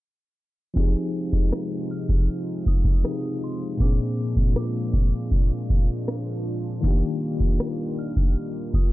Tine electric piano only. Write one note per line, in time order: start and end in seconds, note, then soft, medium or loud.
0.74 2.99 F3 medium
0.74 3.00 C4 medium
0.74 3.00 D#4 medium
0.78 3.01 G4 medium
0.78 3.02 G#4 medium
3.03 3.79 F3 soft
3.03 3.79 C4 soft
3.03 3.80 D#4 soft
3.03 3.81 G4 soft
3.03 3.81 G#4 soft
3.77 6.78 A#2 medium
3.77 6.79 A#3 medium
3.77 6.80 C4 medium
3.82 6.81 D4 medium
3.82 6.82 G#4 medium
6.81 8.93 D#3 medium
6.81 8.93 A#3 medium
6.81 8.93 D4 medium
6.86 8.93 F4 medium
6.86 8.93 G4 medium